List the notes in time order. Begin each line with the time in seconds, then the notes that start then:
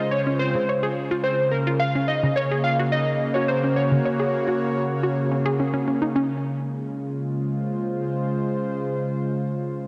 Already playing: C#3 G#3 F4 C5 D#5
0.00 F4
0.11 C#5
0.27 C#4
0.39 C5
0.55 C#3
0.69 C#5
0.83 G#4
1.11 F4
1.23 C5
1.51 A#4
1.67 F4
1.79 F5
1.95 C#4
2.08 D#5
2.13 A#3
2.23 C#3
2.36 C#5
2.51 G#4
2.64 F5
2.79 F#4
2.92 D#5
3.14 F#4
3.34 F#4 C#5
3.48 C5
3.63 C#4
3.70 C#5
3.76 C#5
3.91 C#3
4.05 C#5
4.20 G#4
4.48 F#4
5.04 F#4
5.32 C#4
5.46 G#4
5.60 C#4
5.74 C#4
5.88 C#4
6.02 D#4
6.16 C#4
6.45 G#3
6.63 F4
7.30 C5